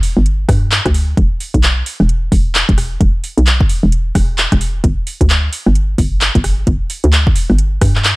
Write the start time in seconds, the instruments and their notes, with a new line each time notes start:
0.03 open hi-hat
0.17 fm bass G1
0.26 closed hi-hat
0.49 fm bass G2, kick, cross-stick, open hi-hat
0.72 clap, closed hi-hat
0.86 fm bass D2, kick, cross-stick, closed hi-hat
0.94 open hi-hat
1.17 fm bass E1, kick, closed hi-hat
1.40 open hi-hat
1.54 fm bass B1, kick, closed hi-hat
1.63 clap, closed hi-hat
1.86 open hi-hat
2.00 fm bass E1, cross-stick
2.09 closed hi-hat
2.32 fm bass E1, kick, open hi-hat
2.55 clap, closed hi-hat
2.69 fm bass E1, kick, closed hi-hat
2.78 cross-stick, open hi-hat
3.01 fm bass E1, kick, closed hi-hat
3.24 open hi-hat
3.38 fm bass B1, closed hi-hat
3.47 clap, closed hi-hat
3.60 kick
3.69 open hi-hat
3.83 fm bass E1
3.92 closed hi-hat
4.15 fm bass E1, kick, cross-stick, open hi-hat
4.38 clap, closed hi-hat
4.52 fm bass E1, kick, cross-stick, closed hi-hat
4.61 open hi-hat
4.84 fm bass G1, kick, closed hi-hat
5.07 open hi-hat
5.21 fm bass D2, kick, closed hi-hat
5.30 clap, closed hi-hat
5.53 open hi-hat
5.67 fm bass G1, cross-stick
5.75 closed hi-hat
5.98 fm bass G1, kick, open hi-hat
6.21 clap, closed hi-hat
6.35 fm bass G1, kick, closed hi-hat
6.44 cross-stick, open hi-hat
6.67 fm bass G1, kick, closed hi-hat
6.90 open hi-hat
7.04 fm bass D2, closed hi-hat
7.13 clap, closed hi-hat
7.27 kick
7.36 open hi-hat
7.50 fm bass G1, cross-stick
7.58 closed hi-hat
7.81 fm bass G2, kick, cross-stick, open hi-hat
7.96 clap
8.04 clap, closed hi-hat